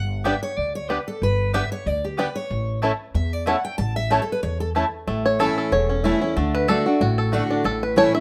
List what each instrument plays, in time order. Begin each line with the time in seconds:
Already playing: upright bass G1, steel-string acoustic guitar F#5
0.24 mandolin B3 G4 D5 G5, five-string banjo B3 D4 G4, steel-string acoustic guitar E5
0.43 steel-string acoustic guitar C#5
0.58 upright bass D2, steel-string acoustic guitar D5
0.75 steel-string acoustic guitar C#5
0.89 mandolin B3 G4 D5 G5, five-string banjo B3 D4 G4, steel-string acoustic guitar B4
1.08 steel-string acoustic guitar A4
1.22 upright bass G1, steel-string acoustic guitar B4
1.53 mandolin B3 G4 D5 G5, five-string banjo B3 D4 G4, steel-string acoustic guitar E5
1.72 steel-string acoustic guitar C#5
1.86 upright bass D2, steel-string acoustic guitar D5
2.04 steel-string acoustic guitar G4
2.17 mandolin B3 G4 D5 G5, five-string banjo B3 D4 G4, steel-string acoustic guitar B4
2.36 steel-string acoustic guitar C#5
2.50 upright bass A1
2.82 mandolin A3 E4 C#5 A5, five-string banjo A3 C#4 E4
3.14 upright bass E2, steel-string acoustic guitar E5
3.33 steel-string acoustic guitar D5
3.46 mandolin A3 E4 C#5 A5, five-string banjo A3 C#4 E4, steel-string acoustic guitar F#5
3.65 steel-string acoustic guitar G5
3.78 upright bass A1, steel-string acoustic guitar A5
3.96 steel-string acoustic guitar E5
4.10 mandolin A3 E4 C#5 A5, five-string banjo A3 C#4 E4, steel-string acoustic guitar C#5
4.22 steel-string acoustic guitar A4
4.32 steel-string acoustic guitar B4
4.43 upright bass E2, steel-string acoustic guitar C#5
4.60 steel-string acoustic guitar A4
4.75 mandolin A3 E4 C#5 A5, five-string banjo A3 C#4 E4
5.07 upright bass A1, steel-string acoustic guitar A2, five-string banjo A3
5.26 five-string banjo C#5
5.39 steel-string acoustic guitar E3 A3 C#4 E4, mandolin A3 E4 C#5 A5, five-string banjo A4
5.58 five-string banjo A4
5.72 upright bass E1, steel-string acoustic guitar E2, five-string banjo C#5
5.89 five-string banjo C#4
6.04 steel-string acoustic guitar E3 A3 C#4 E4, mandolin A3 E4 C#5 A5, five-string banjo E4
6.21 five-string banjo C#4, steel-string acoustic guitar C#4 E4
6.36 upright bass D2, steel-string acoustic guitar D3, five-string banjo A3
6.55 five-string banjo B4
6.68 steel-string acoustic guitar D3 A3 D4 F#4, mandolin A3 F#4 D5 F#5, five-string banjo A4
6.86 steel-string acoustic guitar D4 F#4, five-string banjo F#4
7.01 upright bass A1, steel-string acoustic guitar A2, five-string banjo F#4
7.18 five-string banjo A4
7.32 steel-string acoustic guitar D3 A3 D4 F#4, mandolin A3 F#4 D5 F#5, five-string banjo F#4
7.51 five-string banjo D4
7.64 upright bass A1, steel-string acoustic guitar A2, five-string banjo A4
7.83 five-string banjo B4
7.96 steel-string acoustic guitar E3 A3 C#4 E4, mandolin A3 E4 C#5 A5, five-string banjo C#5
8.14 steel-string acoustic guitar C#4 E4, five-string banjo E5